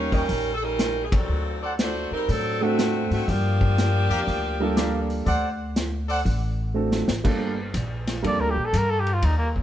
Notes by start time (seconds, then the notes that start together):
Already playing: D#2 G3 A#3 C#4 D#4 F4 G4 A#4 C#5
0.12 G3 C#4 D#4 A#4 C#5 D#5 G5, kick, open hi-hat
0.29 A#1, kick, open hi-hat
0.54 A4
0.63 G3 C#4 D#4 A#4
0.79 snare, closed hi-hat
1.05 G#4
1.12 F#3 C4 D4 A4, kick, ride
1.28 D2
1.62 A4 C5 D5 F#5
1.79 A3 D4 F#4 C5, snare, closed hi-hat
2.11 G3 C4 D#4 A#4, muted upright bass stroke
2.29 A2 F#3 C4 D4 A4, kick, open hi-hat
2.61 D3 A3 C4 D4 F#4 A4
2.79 snare, closed hi-hat
3.11 G#2 D3 A3 C4 F#4, open hi-hat
3.28 G2 F3 A#3 D4 G4, kick, open hi-hat
3.61 kick
3.78 snare, closed hi-hat
4.09 F2 G4 A#4 D5 F5
4.27 D2, kick, open hi-hat
4.60 G3 A#3 D4 F4 A4
4.76 G4 A#4 D5 F5, snare, closed hi-hat
5.10 open hi-hat
5.25 D2 A4 C5 D5 F#5, kick, open hi-hat
5.76 snare, closed hi-hat
6.08 A4 C5 D5 F#5, open hi-hat
6.25 A1, kick, open hi-hat
6.74 A3 C4 D4 F#4 A4
6.92 snare
7.08 A1, snare
7.24 G1 G3 A#3 D4 F4 A4, kick, crash
7.74 A#1, kick, hi-hat pedal, ride
8.07 snare, ride
8.22 F2 G3 A#3 D4 F4 A4, kick, ride
8.27 D5
8.40 D2 A#4
8.50 G4
8.56 A#1
8.65 A4
8.73 G2, kick, hi-hat pedal, ride
8.77 A#4
8.90 A4
9.00 G4
9.07 ride
9.13 F4
9.22 D#2 D#4, kick, ride
9.38 A#3
9.56 kick